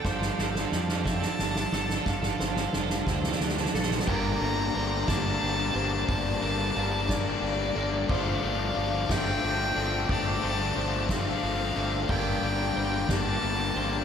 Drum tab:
CC |x-----------------------|------------------------|x-----------------------|------------------------|
RD |------------------------|------------------------|----x---x---x---x---x---|x---x---x---x---x---x---|
SD |o-o-o-o-o-o-o-o-o-o-o-o-|o-o-o-o-o-o-o-oooooooooo|------------o-----------|------------o-----------|
BD |o-----------o-----------|o-----------o-----------|o-----------o-----------|o-----------o-----------|

CC |x-----------------------|------------------------|x-----------------------|
RD |----x---x---x---x---x---|x---x---x---x---x---x---|----x---x---x---x---x---|
SD |------------o-----------|------------o-----------|------------o-----------|
BD |o-----------o-----------|o-----------o-----------|o-----------o-----------|